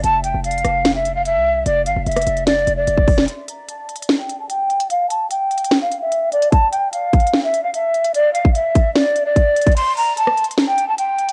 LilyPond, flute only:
\new Staff \with { instrumentName = "Flute" } { \time 4/4 \key f \major \tempo 4 = 148 a''8 g''8 f''4~ f''16 e''8 f''16 e''4 | d''8 f''8 e''4 d''8. d''4~ d''16 | c'''8 bes''8 a''4~ a''16 g''8 a''16 g''4 | f''8 a''8 g''4~ g''16 f''8 e''8. d''8 |
a''8 g''8 f''4~ f''16 e''8 f''16 e''4 | d''8 f''8 e''4 d''8. d''4~ d''16 | c'''8 bes''8 a''4~ a''16 g''8 a''16 g''4 | }